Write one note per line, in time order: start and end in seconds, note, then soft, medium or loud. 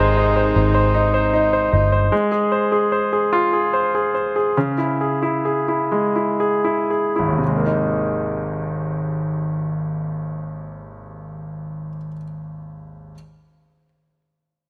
0.00 0.52 G#1 medium
0.00 2.08 C3 medium
0.00 2.08 D#3 medium
0.00 2.08 G#3 soft
0.00 2.08 G#3 medium
0.00 2.10 C4 medium
0.00 0.17 D#4 medium
0.00 2.08 D#4 medium
0.00 0.36 C5 soft
0.17 0.54 D#4 soft
0.36 0.73 C5 soft
0.56 1.69 G#1 medium
0.56 0.93 D#4 soft
0.74 1.12 C5 soft
0.94 1.32 D#4 medium
1.14 1.52 C5 soft
1.33 1.71 D#4 soft
1.53 1.91 C5 soft
1.73 2.10 G1 medium
1.73 2.11 D#4 soft
1.92 2.11 C5 soft
2.12 4.52 G#3 soft
2.32 2.71 G#4 soft
2.52 2.91 C5 soft
2.72 3.11 G#4 soft
2.92 3.72 C5 soft
3.13 3.52 G#4 soft
3.33 4.53 F4 soft
3.53 3.93 G#4 soft
3.73 4.13 C5 soft
3.95 4.34 G#4 soft
4.14 4.55 C5 soft
4.36 4.56 G#4 soft
4.57 7.38 C#3 soft
4.78 5.21 E4 soft
5.01 5.44 G#4 soft
5.22 5.67 E4 soft
5.45 6.38 G#4 soft
5.68 6.14 E4 soft
5.92 7.38 G#3 soft
6.16 6.63 E4 soft
6.40 6.89 G#4 soft
6.64 7.14 E4 soft
6.90 7.41 G#4 soft
7.16 11.88 G#1 soft
7.16 7.41 E4 soft
7.28 11.97 D#2 soft
7.38 12.07 C3 soft
7.48 12.12 G#3 soft
7.57 12.17 A#3 soft
7.66 12.22 D#4 soft